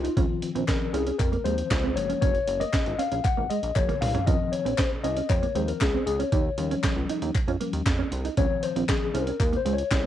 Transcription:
0.00 D#4 F4
0.05 closed hi-hat
0.16 C#2 D#3 F3 C4 C#4, kick, closed hi-hat
0.42 muted clean electric guitar stroke, closed hi-hat
0.55 A#1 C4, closed hi-hat
0.68 A#4, muted clean electric guitar stroke, kick, snare, clap, closed hi-hat
0.93 C2 C#4 G#4, closed hi-hat
1.07 C#4, closed hi-hat
1.19 F2 A#4, muted clean electric guitar stroke, kick, clap, closed hi-hat
1.32 A#3, closed hi-hat
1.44 D#2 D#3 F3 G#3 C4 C5, closed hi-hat
1.58 closed hi-hat
1.71 C#2, kick, snare, clap, closed hi-hat
1.83 C4
1.95 F#1 F3 G#3 A#3 C#5, muted clean electric guitar stroke, closed hi-hat
2.09 C#4, closed hi-hat
2.21 F#1 C#4 C#5, kick, closed hi-hat
2.35 closed hi-hat
2.47 F#1, muted clean electric guitar stroke, closed hi-hat
2.60 A#3 D#5, closed hi-hat
2.73 muted clean electric guitar stroke, kick, snare, clap, closed hi-hat
2.86 G#1, closed hi-hat
2.99 C#4 F5, closed hi-hat
3.12 A#1 C#4, closed hi-hat
3.24 F#5, muted clean electric guitar stroke, kick, clap, closed hi-hat
3.37 G#1 A#3
3.50 G#3 D#5, closed hi-hat
3.63 A#1, closed hi-hat
3.75 F#1 C#5, kick, clap, closed hi-hat, high tom
3.89 A#3, closed hi-hat, mid tom
4.01 C2 F5, muted clean electric guitar stroke, mid tom, open hi-hat
4.14 C#4, closed hi-hat, floor tom
4.26 C#2 D#3 F3 C4 C#4 D#5, kick, closed hi-hat
4.52 C#5, muted clean electric guitar stroke, closed hi-hat
4.65 A#1 C4, closed hi-hat
4.78 C5, muted clean electric guitar stroke, kick, snare, clap, closed hi-hat
5.04 C2 C#4 D#5, closed hi-hat
5.17 C#4, closed hi-hat
5.29 F2 C#5, muted clean electric guitar stroke, kick, clap, closed hi-hat
5.43 A#3, closed hi-hat
5.55 D#2 D#3 F3 G#3 C4 C5, closed hi-hat
5.68 A#4, closed hi-hat
5.81 C#2 G#4, kick, snare, clap, closed hi-hat
5.94 C4
6.06 C#2 G#4, muted clean electric guitar stroke, closed hi-hat
6.19 C#4 C#5, closed hi-hat
6.32 D#2 D#4, kick, closed hi-hat
6.58 D#2 F3 G3 C#4, muted clean electric guitar stroke, closed hi-hat
6.71 C#4, closed hi-hat
6.84 muted clean electric guitar stroke, kick, snare, clap, closed hi-hat
6.96 C#2
7.09 D#4, closed hi-hat
7.22 D#2 D#4, closed hi-hat
7.35 muted clean electric guitar stroke, kick, clap, closed hi-hat
7.48 F2 C#4, closed hi-hat
7.60 F3 G3 A#3 C#4, closed hi-hat
7.73 D#2, closed hi-hat
7.86 F2, kick, snare, clap, closed hi-hat
7.99 C#4
8.12 C2, muted clean electric guitar stroke, closed hi-hat
8.25 D#4, closed hi-hat
8.37 C#2 D#3 F3 C4 C#4 C#5, kick, closed hi-hat
8.63 C5, muted clean electric guitar stroke, closed hi-hat
8.76 A#1 C4, closed hi-hat
8.89 G#4, kick, snare, clap, closed hi-hat
9.14 C2 C#4 C5, closed hi-hat
9.22 A#4
9.27 C#4, closed hi-hat
9.40 D#2, muted clean electric guitar stroke, kick, clap, closed hi-hat
9.53 A#3 C5, closed hi-hat
9.65 C#2 G#3, closed hi-hat
9.74 C#5
9.78 closed hi-hat
9.91 C2, kick, snare, clap, closed hi-hat

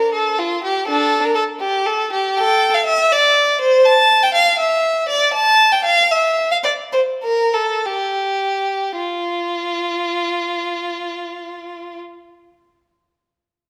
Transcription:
Already playing: A#4
0.13 A4
0.39 F4
0.64 G4
0.88 D4 A4
1.24 A#4
1.35 A4
1.60 G4
1.86 A4
2.12 G4
2.37 A4 G5
2.74 F5
2.86 E5
3.12 D5
3.61 C5
3.86 A5
4.23 G5
4.34 F5
4.59 E5
5.08 D5
5.34 A5
5.72 G5
5.85 F5
6.11 E5
6.51 F5
6.64 D5
6.93 C5
7.23 A#4
7.53 A4
7.86 G4
8.96 F4

